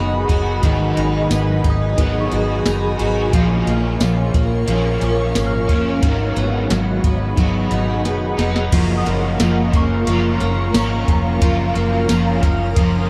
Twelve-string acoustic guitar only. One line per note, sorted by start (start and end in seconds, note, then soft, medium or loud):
0.00 0.62 D#3 medium
0.00 1.30 B3 medium
0.00 0.96 D#4 medium
0.00 0.28 F#4 medium
0.29 2.31 F#4 medium
0.63 3.33 D#3 medium
0.97 1.63 D#4 medium
1.31 1.97 B3 medium
1.64 2.65 D#4 medium
1.98 3.40 B3 medium
2.32 2.98 F#4 medium
2.66 3.40 D#4 medium
2.99 3.40 F#4 medium
3.33 3.99 F3 medium
3.67 4.33 A#3 medium
4.00 4.67 F3 medium
4.34 5.34 A#3 medium
4.68 6.02 F3 medium
5.02 5.68 C#4 medium
5.35 6.09 A#3 medium
5.69 6.09 C#4 medium
6.03 6.70 F#3 medium
6.36 7.03 B3 medium
6.70 7.37 F#3 medium
7.04 8.04 B3 medium
7.38 8.72 F#3 medium
7.72 8.37 D#4 medium
8.05 8.79 B3 medium
8.39 8.79 D#4 medium
8.72 9.39 F3 medium
9.06 9.73 A#3 medium
9.39 10.07 F3 medium
9.73 10.40 A#3 medium
10.07 11.08 F3 medium
10.41 11.75 A#3 medium
10.74 13.10 C#4 medium
11.08 11.41 F3 medium
11.42 12.09 F3 medium
11.75 12.42 A#3 medium
12.09 12.76 F3 medium
12.43 13.10 A#3 medium
12.77 13.10 F3 medium